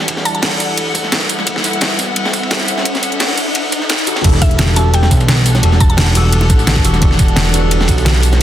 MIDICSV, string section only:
0, 0, Header, 1, 2, 480
1, 0, Start_track
1, 0, Key_signature, 1, "minor"
1, 0, Tempo, 346821
1, 112, Time_signature, 4, 2, 24, 8
1, 11664, End_track
2, 0, Start_track
2, 0, Title_t, "String section"
2, 0, Program_c, 0, 48
2, 0, Note_on_c, 0, 55, 73
2, 0, Note_on_c, 0, 64, 79
2, 0, Note_on_c, 0, 69, 71
2, 0, Note_on_c, 0, 74, 69
2, 0, Note_on_c, 0, 78, 84
2, 1994, Note_off_c, 0, 74, 0
2, 2032, Note_on_c, 0, 76, 75
2, 5577, Note_off_c, 0, 78, 0
2, 5578, Note_off_c, 0, 69, 0
2, 5596, Note_off_c, 0, 76, 0
2, 5633, Note_on_c, 0, 74, 68
2, 5635, Note_on_c, 0, 78, 79
2, 5636, Note_on_c, 0, 69, 66
2, 5817, Note_off_c, 0, 64, 0
2, 5818, Note_off_c, 0, 55, 0
2, 5854, Note_off_c, 0, 69, 0
2, 5856, Note_off_c, 0, 78, 0
2, 5871, Note_off_c, 0, 74, 0
2, 5871, Note_on_c, 0, 55, 81
2, 5871, Note_on_c, 0, 69, 90
2, 5872, Note_on_c, 0, 62, 74
2, 5872, Note_on_c, 0, 78, 74
2, 11664, Note_off_c, 0, 55, 0
2, 11664, Note_off_c, 0, 62, 0
2, 11664, Note_off_c, 0, 69, 0
2, 11664, Note_off_c, 0, 78, 0
2, 11664, End_track
0, 0, End_of_file